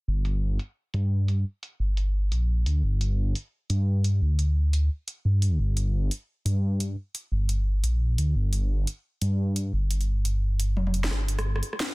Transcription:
0.08 0.58 G1 medium
0.25 closed hi-hat medium
0.59 closed hi-hat medium
0.94 1.45 G2 medium
0.94 closed hi-hat medium
1.28 closed hi-hat medium
1.63 closed hi-hat medium
1.80 2.31 G1 medium
1.97 closed hi-hat medium
2.32 2.65 A#1 loud
2.32 closed hi-hat medium
2.66 2.82 D2 medium
2.66 closed hi-hat medium
2.83 3.34 G1 medium
3.01 closed hi-hat medium
3.35 closed hi-hat medium
3.70 4.20 G2 medium
3.70 closed hi-hat medium
4.04 closed hi-hat medium
4.21 4.89 D2 medium
4.39 closed hi-hat medium
4.73 closed hi-hat medium
5.08 closed hi-hat medium
5.25 5.58 G2 medium
5.42 closed hi-hat medium
5.59 6.10 G1 medium
5.77 closed hi-hat medium
6.11 closed hi-hat medium
6.45 6.96 G2 medium
6.45 closed hi-hat medium
6.80 closed hi-hat medium
7.15 closed hi-hat medium
7.32 7.82 G1 loud
7.49 closed hi-hat medium
7.83 8.17 A#1 loud
7.83 closed hi-hat medium
8.18 8.34 D2 medium
8.18 closed hi-hat medium
8.35 8.86 G1 loud
8.53 closed hi-hat medium
8.87 closed hi-hat medium
9.22 9.72 G2 loud
9.22 closed hi-hat medium
9.56 closed hi-hat medium
9.73 10.76 G1 medium
9.91 closed hi-hat medium
10.01 closed hi-hat soft
10.25 closed hi-hat medium
10.60 closed hi-hat medium
10.76 11.10 F1 medium
10.76 high tom medium
10.87 high tom medium
10.94 closed hi-hat medium
11.04 snare medium
11.11 11.62 G1 medium
11.11 cross-stick medium
11.28 closed hi-hat medium
11.39 cross-stick medium
11.39 closed hi-hat soft
11.56 cross-stick medium
11.63 closed hi-hat medium
11.73 cross-stick medium
11.80 snare loud

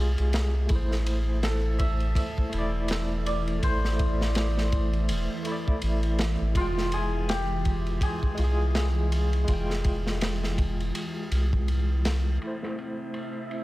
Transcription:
0.00 0.16 C2 medium
0.00 0.65 G#3 medium
0.00 0.67 F4 medium
0.00 0.55 G4 medium
0.00 0.69 G#4 medium
0.18 0.67 C2 medium
0.18 ride soft
0.33 snare loud
0.33 ride medium
0.66 12.42 E3 medium
0.66 2.47 A3 medium
0.66 12.42 E5 medium
0.66 kick loud
0.66 ride medium
0.70 2.14 A1 loud
0.70 2.50 E4 medium
0.75 2.52 C5 medium
0.91 snare soft
1.06 ride medium
1.43 4.36 A4 medium
1.43 snare loud
1.43 ride medium
1.78 2.15 E5 loud
1.78 kick loud
1.78 ride medium
2.00 ride soft
2.15 4.45 E5 medium
2.15 kick loud
2.15 ride medium
2.38 kick medium
2.49 3.60 E1 loud
2.49 3.57 A3 medium
2.49 ride medium
2.54 3.59 E4 medium
2.58 3.62 D5 loud
2.88 snare loud
2.88 ride medium
3.26 5.73 D5 loud
3.26 ride medium
3.47 ride soft
3.59 5.40 A3 medium
3.59 kick loud
3.59 ride medium
3.63 5.11 A1 loud
3.63 5.42 E4 medium
3.63 6.27 C5 loud
3.68 5.45 C5 medium
3.85 snare soft
3.99 kick loud
3.99 ride medium
4.21 snare soft
4.35 snare loud
4.35 ride medium
4.58 snare soft
4.72 kick medium
4.72 ride medium
4.93 ride soft
5.09 5.28 E1 loud
5.09 ride medium
5.42 6.50 A3 medium
5.42 ride medium
5.47 6.52 E4 medium
5.52 6.55 D5 loud
5.68 kick medium
5.82 6.36 A1 medium
5.82 ride medium
6.03 ride soft
6.18 snare loud
6.18 ride medium
6.41 6.54 A1 medium
6.52 7.99 F1 loud
6.52 8.33 G#3 medium
6.52 kick loud
6.52 ride medium
6.56 8.35 F4 medium
6.56 9.93 F4 loud
6.61 8.37 G5 medium
6.78 snare soft
6.92 7.35 G#4 medium
6.92 ride medium
7.29 8.09 G4 loud
7.29 snare loud
7.29 ride medium
7.65 kick medium
7.65 ride medium
7.87 ride soft
8.01 11.64 G#4 medium
8.01 kick loud
8.01 ride medium
8.23 kick loud
8.35 9.45 C2 loud
8.35 9.43 G#3 medium
8.35 ride medium
8.39 9.45 F4 medium
8.44 9.47 G#4 loud
8.75 snare loud
8.75 ride medium
9.12 ride medium
9.33 ride soft
9.44 10.92 F1 loud
9.44 11.25 G#3 medium
9.44 kick loud
9.44 ride medium
9.49 11.28 F4 medium
9.53 11.30 G5 medium
9.70 snare soft
9.84 kick medium
9.84 ride medium
10.07 snare soft
10.21 snare loud
10.21 ride medium
10.44 snare soft
10.58 kick medium
10.58 ride medium
10.80 ride soft
10.95 ride medium
11.31 12.38 C2 loud
11.31 ride medium
11.53 kick medium
11.68 ride medium
12.05 snare loud
12.05 ride medium
12.38 13.64 A3 medium
12.38 13.64 C4 medium
12.38 13.64 E4 medium
12.38 13.64 E5 medium
12.38 ride medium
12.43 13.64 E4 medium
12.47 13.64 C5 medium
12.63 snare soft
12.78 ride medium
13.14 ride medium
13.51 ride medium

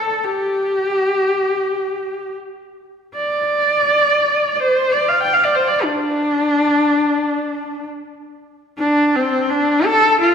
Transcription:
0.00 0.26 A4 medium
0.24 2.35 G4 medium
3.15 4.55 D5 loud
4.55 4.93 C5 medium
4.55 4.61 D5 medium
4.92 5.10 D5 loud
5.08 5.22 F5 medium
5.23 5.35 G5 medium
5.33 5.45 F5 loud
5.44 5.56 D5 medium
5.55 5.69 C5 medium
5.68 5.86 D5 medium
5.84 7.88 D4 medium
8.78 9.17 D4 medium
9.16 9.52 C4 medium
9.50 9.87 D4 loud
9.85 10.20 A4 loud
10.21 10.35 F4 medium

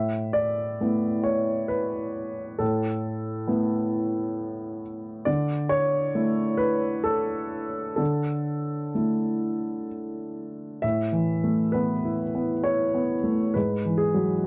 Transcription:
0.00 0.78 A2 soft
0.00 0.34 E5 medium
0.33 1.25 D5 medium
0.81 2.56 A3 soft
0.81 2.57 B3 soft
0.81 2.57 E4 soft
1.24 1.70 C#5 medium
1.68 2.59 B4 medium
2.59 3.46 A2 soft
2.59 4.82 A4 medium
3.48 5.22 A3 soft
3.48 5.22 B3 soft
3.48 5.22 E4 soft
5.25 6.12 D3 soft
5.25 5.70 D5 medium
5.69 6.60 C#5 medium
6.15 7.95 A3 soft
6.15 7.95 E4 soft
6.57 7.05 B4 medium
7.04 7.95 A4 medium
7.96 8.90 D3 soft
7.96 9.87 A4 medium
8.95 10.79 A3 soft
8.95 10.79 E4 soft
10.82 13.51 A2 soft
10.82 11.73 E5 medium
11.12 11.61 E3 soft
11.44 11.92 A3 soft
11.72 12.22 B3 soft
11.72 12.64 B4 medium
12.05 12.53 E4 soft
12.35 12.83 B3 soft
12.64 13.13 E4 soft
12.64 13.54 C#5 medium
12.94 13.43 B3 soft
13.23 13.54 A3 soft
13.54 14.47 G#2 soft
13.54 13.99 B4 medium
13.85 14.33 E3 soft
13.98 14.43 G#4 medium
14.14 14.47 F#3 soft

